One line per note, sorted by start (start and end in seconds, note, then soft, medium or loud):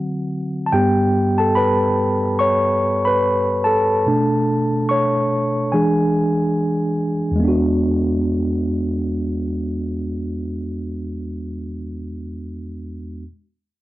0.67 0.72 A5 medium
0.73 1.94 G2 soft
0.73 1.94 G3 soft
0.73 1.94 B3 soft
0.73 1.35 G4 medium
0.73 1.41 G5 medium
1.38 1.55 A4 medium
1.38 1.56 A5 medium
1.55 2.36 B4 medium
1.55 2.41 B5 medium
2.39 3.02 C#5 medium
2.39 3.07 C#6 medium
3.05 3.61 B4 medium
3.05 3.60 B5 medium
3.64 4.86 A4 medium
3.64 4.93 A5 medium
4.06 4.64 B2 soft
4.06 4.65 A3 soft
4.06 4.65 D4 medium
4.89 5.69 C#5 medium
4.89 5.75 C#6 medium
5.72 6.94 E3 soft
5.72 6.94 G#3 soft
5.72 6.94 D4 soft
5.72 6.94 G#4 medium
5.72 6.93 G#5 medium
7.31 11.47 E2 medium
7.36 11.52 G#3 medium
7.40 11.56 B3 medium
7.44 11.60 D4 medium
7.44 11.64 F#4 medium